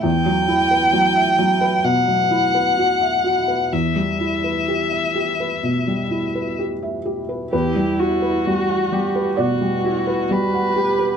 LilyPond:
<<
  \new Staff \with { instrumentName = "Violin" } { \time 4/4 \key e \minor \tempo 4 = 64 g''2 fis''2 | e''2. r4 | g'8 fis'4. fis'4 b'4 | }
  \new Staff \with { instrumentName = "Felt piano" } { \time 4/4 \key e \minor << { r1 | r1 | b'2 d''2 | } \\ { e,16 fis16 e'16 b'16 fis16 e''16 fis16 b'16 b,16 fis16 e'16 b'16 fis'16 e''16 fis'16 b'16 | e,16 g16 e'16 b'16 g'16 e''16 g'16 b'16 b,16 g16 e'16 b'16 g'16 e''16 g'16 b'16 | e,16 g16 fis'16 b'16 g16 fis''16 g16 b'16 b,16 g16 fis'16 b'16 g16 fis''16 g'16 b'16 | } >> }
  \new Staff \with { instrumentName = "Cello" } { \time 4/4 \key e \minor r1 | r1 | e'4 fis'8 g'8 fis'8 e'8 fis'8 g'8 | }
>>